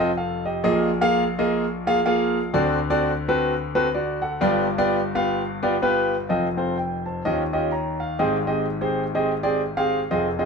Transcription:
grand piano
Already playing: F1 F2
0.17 A4 F5
0.45 G4 D#5
0.64 A#1 A#2 A#3 F4 G#4 D#5
1.01 A#3 F4 G#4 F5
1.39 A#3 F4 G#4 D#5
1.87 A#3 F4 G#4 F5
2.06 A#3 F4 G#4 F5
2.53 D2 D3 C4 F#4 A4 D5
2.90 C4 F#4 A4 D5
3.28 C4 F#4 A4 B4
3.75 C4 F#4 A4 B4
3.94 F#4 D5
4.22 A4 F#5
4.41 G1 G2 B3 F4 G4 D5
4.78 B3 F4 G4 D5
5.15 B3 F4 G4 F5
5.63 B3 F4 G4 D5
5.82 B3 F4 G4 B4
6.29 F1 F2 C4 F4 A4 D#5
6.57 C4 F4 A4 C5
6.78 G5
7.06 C5 A5
7.25 D#2 D#3 C#4 F4 G4 D#5
7.53 C#4 F4 G4 D#5
7.72 C#5 A#5
8.00 F5
8.19 G#1 G#2 C4 G4 G#4 D#5
8.47 C4 G4 G#4 D#5
8.81 C4 G4 G#4 C5
9.14 C4 G4 G#4 D#5
9.43 C4 G4 G#4 D5
9.77 C4 G4 G#4 F5
10.11 F1 F2 C4 F4 G#4 D#5
10.39 C4 F4 G#4 D#5

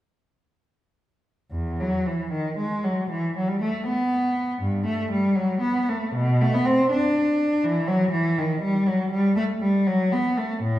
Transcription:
cello
1.51 E2
1.80 F#3
2.06 E3
2.32 D#3
2.58 G#3
2.84 F#3
3.10 E3
3.37 F#3
3.48 G3
3.61 A3
3.87 B3
4.62 G2
4.86 A3
5.11 G3
5.35 F#3
5.61 B3
5.89 A3
6.15 B2
6.41 A3
6.54 B3
6.65 C4
6.91 D4
7.64 E3
7.87 F#3
8.11 E3
8.38 D#3
8.61 G3
8.87 F#3
9.11 G3
9.36 A3
9.61 G3
9.87 F#3
10.12 B3
10.37 A3
10.62 A2

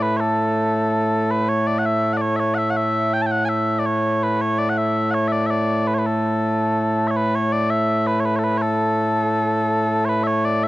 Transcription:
bagpipes
Already playing: A2 A3
0.02 B4
0.17 A4 C#5
1.31 B4
1.49 C#5
1.67 D5
1.79 F#5
1.86 E5
2.13 F#5
2.17 D5
2.22 C#5
2.36 C#5 E5
2.55 E5 F#5
2.70 F#5
2.76 E5
3.13 G5
3.22 A5
3.26 G5
3.31 F#5
3.45 E5 G#5
3.79 D5
3.86 C#5
4.23 B4
4.41 C#5
4.59 D5
4.69 F#5
4.78 E5
5.11 C#5 F#5
5.28 E5
5.32 D5
5.47 D5 E5
5.87 B4
5.94 C#5
5.98 B4
6.06 A4
7.08 C#5 E5
7.16 B4
7.35 C#5
7.52 D5
7.70 E5
8.07 B4
8.20 C#5
8.25 B4
8.36 A4 C#5
8.44 B4
8.57 C#5
8.62 A4
10.05 B4 C#5
10.24 C#5 E5
10.45 D5
10.64 E5

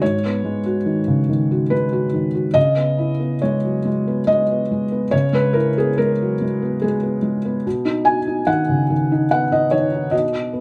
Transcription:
felt piano
Already playing: F#4
0.02 G#2 C#5
0.26 B3
0.44 G#3
0.66 F#4
0.86 D#3
1.08 C#3
1.29 D#3
1.51 F#4
1.70 G#3 B4
1.93 F#4
2.13 D#3
2.35 F#4
2.54 C#3 D#5
2.76 B3
2.98 E4
3.20 B3
3.42 G#3 C#5
3.65 F#3
3.85 G#3
4.07 B3
4.27 G#3 D#5
4.51 B3
4.71 G#3
4.92 B3
5.11 C#3 C#5
5.33 G#3 B4
5.53 E4 A#4
5.78 B3 G#4
5.98 G#3 A#4
6.22 F#3
6.41 G#3
6.62 B3
6.82 G#3 G#4
7.03 B3
7.22 G#3
7.45 B3
7.66 B2
7.85 D#4
8.05 F#4 G#5
8.27 D#4
8.47 D#3 F#5
8.69 C#3
8.90 D#3
9.12 D#4
9.31 B3 F#5
9.52 D#4 D#5
9.71 D#3 C#5
9.92 D#4
10.11 B2 D#5
10.33 F#4
10.53 B3

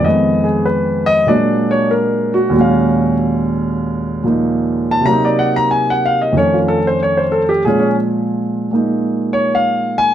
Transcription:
grand piano
0.00 F2 D#3
0.04 G#3 D#5
0.09 B3
0.44 G#4
0.65 B4
1.06 D#5
1.26 A#2 F#3 G#3 A#3 D4 D5
1.71 C#5
1.91 A#4
2.34 F#4
2.50 D#2 A#2 F#3
2.57 G#3 C#4
2.61 F5
4.23 A#2 F3 A#3 D#4
4.91 A5
5.01 C3
5.05 F#3 A#3 A#5
5.12 D#4
5.25 D5
5.39 F#5
5.56 A#5
5.71 G#5
5.90 F#5
6.06 F5
6.22 D#5
6.33 F2 D#3 A3
6.37 C#4 C#5
6.53 F4
6.68 A4
6.87 C5
7.03 C#5
7.17 C5
7.32 A4
7.49 G4
7.65 A#2 F3 G#3 C#4 G#4
7.79 C#4
8.71 G#3 A#3 D#4
9.33 C#5
9.55 F5
9.98 G#5

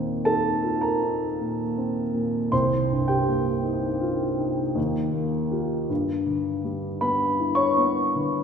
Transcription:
grand piano
Already playing: D#2 A#2 C4
0.25 D#4 A4 A5
0.64 F4
0.81 A#4 A#5
1.02 D#4
1.41 A#2
1.78 C4
2.14 A#2
2.52 C2 C5 C6
2.91 G2
3.08 G4 G5
3.27 A#3
3.64 D#4
4.01 F4
4.39 D#4
4.76 D#2
5.13 A#3
5.51 F4 G4
5.90 G2
6.27 D3
6.64 G3
7.01 B3 B4 B5
7.40 E4
7.55 C#5 C#6
7.78 B3
8.15 D3

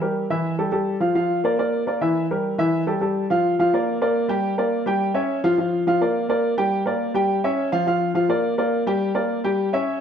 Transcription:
upright piano
0.01 G3 G4 A#4
0.30 E3 E4 E5
0.58 G3 G4 A4
0.72 G3 G4 A4
1.00 F3 F4 F5
1.15 F3 F4 F5
1.44 A#3 A#4 D5
1.59 A#3 A#4 D5
1.87 A#3 A#4 D5
2.01 E3 E4 E5
2.31 G3 G4 A#4
2.58 E3 E4 E5
2.87 G3 G4 A4
3.01 G3 G4 A4
3.30 F3 F4 F5
3.59 F3 F4 F5
3.73 A#3 A#4 D5
4.01 A#3 A#4 D5
4.28 G3 G4 G5
4.58 A#3 A#4 D5
4.86 G3 G4 G5
5.14 C#4 C#5 E5
5.44 F3 F4 F5
5.58 F3 F4 F5
5.87 F3 F4 F5
6.01 A#3 A#4 D5
6.29 A#3 A#4 D5
6.58 G3 G4 G5
6.86 A#3 A#4 D5
7.14 G3 G4 G5
7.44 C#4 C#5 E5
7.72 F3 F4 F5
7.87 F3 F4 F5
8.14 F3 F4 F5
8.29 A#3 A#4 D5
8.58 A#3 A#4 D5
8.87 G3 G4 G5
9.15 A#3 A#4 D5
9.44 G3 G4 G5
9.73 C#4 C#5 E5

